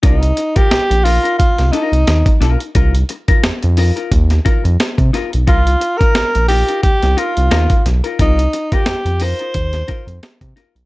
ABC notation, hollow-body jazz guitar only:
X:1
M:4/4
L:1/16
Q:"Swing 16ths" 1/4=88
K:Cm
V:1 name="Hollow-body jazz guitar"
[EFB] z2 [EFB] z2 [EFB] [EFB] z2 [EFB] z3 [EFB] z | [EFB] z2 [EFB] z2 [EFB] [EFB] z2 [EFB] z3 [EFB] z | [EFB] z2 [EFB] z2 [EFB] [EFB] z2 [EFB] z [EFB] z2 [EFB] | [EFB] z2 [EFB] z2 [EFB] [EFB] z2 [EFB] z3 [EFB] z |]